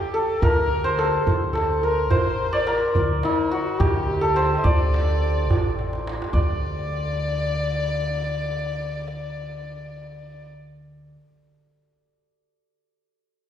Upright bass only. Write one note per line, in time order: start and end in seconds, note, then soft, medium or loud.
0.42 1.16 D2 medium
1.27 2.11 D2 medium
2.11 2.85 A1 medium
2.96 3.20 D2 medium
3.80 4.54 D2 medium
4.64 5.49 D2 medium
5.49 6.23 A1 medium
6.33 11.15 D2 medium